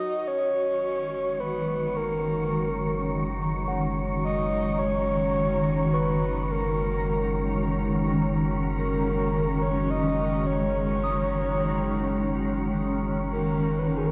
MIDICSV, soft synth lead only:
0, 0, Header, 1, 2, 480
1, 0, Start_track
1, 0, Tempo, 1132075
1, 1797, Time_signature, 4, 2, 24, 8
1, 5985, End_track
2, 0, Start_track
2, 0, Title_t, "Soft synth lead"
2, 0, Program_c, 0, 80
2, 0, Note_on_c, 0, 75, 121
2, 116, Note_on_c, 0, 73, 110
2, 122, Note_off_c, 0, 75, 0
2, 594, Note_on_c, 0, 71, 96
2, 600, Note_off_c, 0, 73, 0
2, 833, Note_on_c, 0, 70, 93
2, 839, Note_off_c, 0, 71, 0
2, 1315, Note_off_c, 0, 70, 0
2, 1797, Note_on_c, 0, 75, 112
2, 2030, Note_on_c, 0, 73, 104
2, 2036, Note_off_c, 0, 75, 0
2, 2516, Note_on_c, 0, 71, 94
2, 2522, Note_off_c, 0, 73, 0
2, 2761, Note_on_c, 0, 70, 86
2, 2768, Note_off_c, 0, 71, 0
2, 3239, Note_off_c, 0, 70, 0
2, 3717, Note_on_c, 0, 70, 94
2, 4079, Note_on_c, 0, 73, 91
2, 4086, Note_off_c, 0, 70, 0
2, 4198, Note_on_c, 0, 75, 108
2, 4205, Note_off_c, 0, 73, 0
2, 4436, Note_on_c, 0, 73, 103
2, 4442, Note_off_c, 0, 75, 0
2, 5396, Note_off_c, 0, 73, 0
2, 5647, Note_on_c, 0, 70, 103
2, 5846, Note_on_c, 0, 71, 79
2, 5852, Note_off_c, 0, 70, 0
2, 5883, Note_on_c, 0, 70, 78
2, 5890, Note_off_c, 0, 71, 0
2, 5924, Note_on_c, 0, 68, 78
2, 5930, Note_off_c, 0, 70, 0
2, 5963, Note_on_c, 0, 70, 81
2, 5969, Note_off_c, 0, 68, 0
2, 5985, Note_off_c, 0, 70, 0
2, 5985, End_track
0, 0, End_of_file